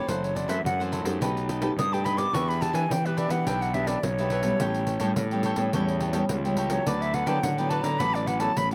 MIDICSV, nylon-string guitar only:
0, 0, Header, 1, 2, 480
1, 0, Start_track
1, 0, Key_signature, 2, "major"
1, 0, Tempo, 566038
1, 66, Time_signature, 4, 2, 24, 8
1, 7417, End_track
2, 0, Start_track
2, 0, Title_t, "Nylon-string guitar"
2, 0, Program_c, 0, 24
2, 0, Note_on_c, 0, 52, 59
2, 0, Note_on_c, 0, 57, 63
2, 0, Note_on_c, 0, 60, 65
2, 76, Note_on_c, 0, 42, 57
2, 379, Note_off_c, 0, 52, 0
2, 381, Note_off_c, 0, 57, 0
2, 383, Note_off_c, 0, 60, 0
2, 416, Note_on_c, 0, 52, 61
2, 420, Note_on_c, 0, 57, 67
2, 423, Note_on_c, 0, 60, 68
2, 526, Note_off_c, 0, 42, 0
2, 549, Note_on_c, 0, 42, 57
2, 622, Note_off_c, 0, 52, 0
2, 624, Note_off_c, 0, 57, 0
2, 625, Note_off_c, 0, 60, 0
2, 678, Note_on_c, 0, 52, 58
2, 681, Note_on_c, 0, 57, 57
2, 687, Note_on_c, 0, 60, 64
2, 873, Note_off_c, 0, 52, 0
2, 875, Note_off_c, 0, 57, 0
2, 877, Note_off_c, 0, 60, 0
2, 892, Note_on_c, 0, 57, 63
2, 898, Note_on_c, 0, 63, 60
2, 901, Note_on_c, 0, 67, 76
2, 1002, Note_off_c, 0, 42, 0
2, 1029, Note_on_c, 0, 47, 56
2, 1340, Note_off_c, 0, 57, 0
2, 1342, Note_off_c, 0, 63, 0
2, 1344, Note_off_c, 0, 67, 0
2, 1369, Note_on_c, 0, 57, 57
2, 1374, Note_on_c, 0, 63, 59
2, 1378, Note_on_c, 0, 67, 73
2, 1482, Note_off_c, 0, 47, 0
2, 1512, Note_on_c, 0, 47, 54
2, 1579, Note_off_c, 0, 57, 0
2, 1579, Note_off_c, 0, 63, 0
2, 1582, Note_off_c, 0, 67, 0
2, 1637, Note_on_c, 0, 57, 59
2, 1641, Note_on_c, 0, 63, 66
2, 1643, Note_on_c, 0, 67, 66
2, 1832, Note_off_c, 0, 57, 0
2, 1833, Note_off_c, 0, 63, 0
2, 1834, Note_off_c, 0, 67, 0
2, 1841, Note_on_c, 0, 59, 58
2, 1848, Note_on_c, 0, 62, 61
2, 1851, Note_on_c, 0, 67, 65
2, 1963, Note_off_c, 0, 47, 0
2, 1980, Note_on_c, 0, 52, 59
2, 2203, Note_off_c, 0, 59, 0
2, 2204, Note_off_c, 0, 62, 0
2, 2210, Note_off_c, 0, 67, 0
2, 2212, Note_on_c, 0, 59, 52
2, 2217, Note_on_c, 0, 62, 51
2, 2220, Note_on_c, 0, 67, 56
2, 2437, Note_off_c, 0, 52, 0
2, 2461, Note_on_c, 0, 47, 57
2, 2539, Note_off_c, 0, 59, 0
2, 2540, Note_off_c, 0, 62, 0
2, 2543, Note_off_c, 0, 67, 0
2, 2593, Note_on_c, 0, 59, 62
2, 2596, Note_on_c, 0, 62, 57
2, 2600, Note_on_c, 0, 67, 60
2, 2789, Note_off_c, 0, 59, 0
2, 2790, Note_off_c, 0, 62, 0
2, 2793, Note_off_c, 0, 67, 0
2, 2805, Note_on_c, 0, 59, 65
2, 2808, Note_on_c, 0, 62, 56
2, 2812, Note_on_c, 0, 67, 75
2, 2918, Note_off_c, 0, 47, 0
2, 2945, Note_on_c, 0, 52, 56
2, 3135, Note_off_c, 0, 59, 0
2, 3137, Note_off_c, 0, 62, 0
2, 3138, Note_off_c, 0, 67, 0
2, 3174, Note_on_c, 0, 59, 60
2, 3178, Note_on_c, 0, 62, 58
2, 3181, Note_on_c, 0, 67, 61
2, 3399, Note_off_c, 0, 52, 0
2, 3403, Note_off_c, 0, 59, 0
2, 3405, Note_off_c, 0, 62, 0
2, 3406, Note_off_c, 0, 67, 0
2, 3418, Note_on_c, 0, 47, 50
2, 3550, Note_on_c, 0, 59, 71
2, 3555, Note_on_c, 0, 62, 65
2, 3559, Note_on_c, 0, 67, 72
2, 3748, Note_off_c, 0, 59, 0
2, 3749, Note_off_c, 0, 62, 0
2, 3752, Note_off_c, 0, 67, 0
2, 3763, Note_on_c, 0, 55, 62
2, 3767, Note_on_c, 0, 59, 62
2, 3771, Note_on_c, 0, 61, 69
2, 3876, Note_off_c, 0, 47, 0
2, 3907, Note_on_c, 0, 45, 61
2, 4094, Note_off_c, 0, 55, 0
2, 4097, Note_off_c, 0, 59, 0
2, 4097, Note_off_c, 0, 61, 0
2, 4248, Note_on_c, 0, 55, 66
2, 4251, Note_on_c, 0, 59, 55
2, 4257, Note_on_c, 0, 61, 72
2, 4361, Note_off_c, 0, 45, 0
2, 4385, Note_on_c, 0, 52, 58
2, 4457, Note_off_c, 0, 55, 0
2, 4459, Note_off_c, 0, 59, 0
2, 4460, Note_off_c, 0, 61, 0
2, 4515, Note_on_c, 0, 55, 62
2, 4519, Note_on_c, 0, 59, 66
2, 4522, Note_on_c, 0, 61, 61
2, 4710, Note_off_c, 0, 55, 0
2, 4713, Note_off_c, 0, 59, 0
2, 4713, Note_off_c, 0, 61, 0
2, 4722, Note_on_c, 0, 55, 67
2, 4726, Note_on_c, 0, 59, 65
2, 4728, Note_on_c, 0, 61, 72
2, 4814, Note_off_c, 0, 55, 0
2, 4815, Note_off_c, 0, 59, 0
2, 4817, Note_off_c, 0, 61, 0
2, 4840, Note_off_c, 0, 52, 0
2, 4862, Note_on_c, 0, 45, 59
2, 4868, Note_on_c, 0, 55, 61
2, 4871, Note_on_c, 0, 59, 57
2, 4875, Note_on_c, 0, 61, 70
2, 5186, Note_off_c, 0, 55, 0
2, 5188, Note_off_c, 0, 59, 0
2, 5189, Note_off_c, 0, 61, 0
2, 5206, Note_on_c, 0, 55, 63
2, 5210, Note_on_c, 0, 59, 62
2, 5212, Note_on_c, 0, 61, 67
2, 5319, Note_off_c, 0, 45, 0
2, 5347, Note_on_c, 0, 52, 60
2, 5416, Note_off_c, 0, 55, 0
2, 5418, Note_off_c, 0, 59, 0
2, 5419, Note_off_c, 0, 61, 0
2, 5468, Note_on_c, 0, 55, 68
2, 5471, Note_on_c, 0, 59, 71
2, 5475, Note_on_c, 0, 61, 77
2, 5667, Note_off_c, 0, 55, 0
2, 5669, Note_off_c, 0, 59, 0
2, 5670, Note_off_c, 0, 61, 0
2, 5682, Note_on_c, 0, 54, 68
2, 5688, Note_on_c, 0, 59, 67
2, 5693, Note_on_c, 0, 64, 62
2, 5801, Note_off_c, 0, 52, 0
2, 5819, Note_on_c, 0, 50, 61
2, 6134, Note_off_c, 0, 54, 0
2, 6137, Note_off_c, 0, 59, 0
2, 6139, Note_off_c, 0, 64, 0
2, 6165, Note_on_c, 0, 54, 71
2, 6169, Note_on_c, 0, 59, 67
2, 6173, Note_on_c, 0, 64, 72
2, 6277, Note_off_c, 0, 50, 0
2, 6305, Note_on_c, 0, 45, 60
2, 6376, Note_off_c, 0, 54, 0
2, 6378, Note_off_c, 0, 59, 0
2, 6379, Note_off_c, 0, 64, 0
2, 6433, Note_on_c, 0, 54, 60
2, 6438, Note_on_c, 0, 59, 63
2, 6442, Note_on_c, 0, 64, 62
2, 6630, Note_off_c, 0, 54, 0
2, 6633, Note_off_c, 0, 59, 0
2, 6634, Note_off_c, 0, 64, 0
2, 6643, Note_on_c, 0, 54, 63
2, 6646, Note_on_c, 0, 59, 66
2, 6652, Note_on_c, 0, 64, 75
2, 6735, Note_off_c, 0, 54, 0
2, 6737, Note_off_c, 0, 59, 0
2, 6738, Note_off_c, 0, 64, 0
2, 6760, Note_off_c, 0, 45, 0
2, 6782, Note_on_c, 0, 54, 60
2, 6784, Note_on_c, 0, 50, 57
2, 6787, Note_on_c, 0, 59, 63
2, 6792, Note_on_c, 0, 64, 71
2, 7104, Note_off_c, 0, 54, 0
2, 7107, Note_off_c, 0, 59, 0
2, 7108, Note_off_c, 0, 64, 0
2, 7126, Note_on_c, 0, 54, 69
2, 7131, Note_on_c, 0, 59, 71
2, 7132, Note_on_c, 0, 64, 70
2, 7240, Note_off_c, 0, 50, 0
2, 7261, Note_on_c, 0, 45, 55
2, 7337, Note_off_c, 0, 54, 0
2, 7339, Note_off_c, 0, 59, 0
2, 7340, Note_off_c, 0, 64, 0
2, 7417, Note_off_c, 0, 45, 0
2, 7417, End_track
0, 0, End_of_file